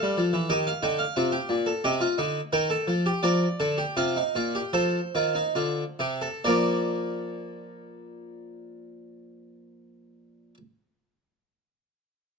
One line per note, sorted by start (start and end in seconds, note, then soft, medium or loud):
0.00 0.18 G3 medium
0.00 0.50 A4 loud
0.00 0.50 F5 medium
0.18 0.34 F3 medium
0.33 0.50 E3 medium
0.50 0.70 D#3 medium
0.50 0.70 G4 loud
0.50 0.66 D#5 medium
0.67 0.83 F5 medium
0.83 1.03 D3 medium
0.83 1.03 D#4 medium
0.83 0.99 G5 medium
0.99 1.80 F5 medium
1.16 1.37 C3 medium
1.16 1.33 F4 medium
1.32 1.53 G4 medium
1.49 1.70 A#2 loud
1.66 1.83 A4 medium
1.84 2.05 C3 medium
1.84 2.00 G4 loud
1.84 2.50 D#5 medium
2.01 2.17 F4 loud
2.18 2.39 D3 medium
2.18 2.39 D#4 loud
2.53 2.74 D#3 medium
2.53 2.69 A#4 loud
2.53 3.21 G5 medium
2.70 2.92 A4 medium
2.88 3.09 F3 medium
3.06 3.23 G4 loud
3.23 3.46 F3 medium
3.23 3.46 A#4 medium
3.23 3.95 D5 loud
3.60 3.83 D3 medium
3.60 3.77 A4 medium
3.78 3.96 G4 medium
3.97 4.21 C3 medium
3.97 4.15 F4 loud
3.97 4.72 F5 medium
4.17 4.35 D#4 medium
4.35 4.60 A#2 medium
4.35 4.54 F4 medium
4.55 4.74 G4 medium
4.73 4.99 F3 medium
4.73 4.99 A4 medium
4.73 6.38 C5 loud
5.15 5.40 D#3 medium
5.15 5.35 F4 medium
5.35 5.55 D#4 medium
5.55 5.83 D3 medium
5.55 5.82 F4 medium
5.99 6.26 C3 medium
5.99 6.21 G4 medium
6.21 6.43 A4 medium
6.44 10.55 A#2 medium
6.44 10.57 F3 medium
6.44 10.57 A#3 medium
6.44 10.55 A#4 medium
6.44 10.54 D5 medium